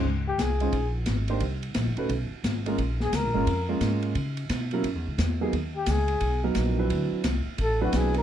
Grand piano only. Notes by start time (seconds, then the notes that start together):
0.61 G#3 C#4 D#4 F4 C5
1.30 A#3 D4 D#4 G4 C5
1.98 A3 C#4 D#4 F#4 B4
2.66 G#3 A#3 C#4 F4 A#4
3.34 G#3 A#3 C#4 F4 A#4
3.69 G#3 A#3 C#4 F4 A#4
4.73 F#3 A#3 C#4 E4 A#4
5.41 F#3 A#3 B3 D#4 G#4
6.43 F#3 A#3 B3 D#4 A#4
6.78 F#3 C4 D4 E4 B4
7.81 F#3 C4 D4 E4 B4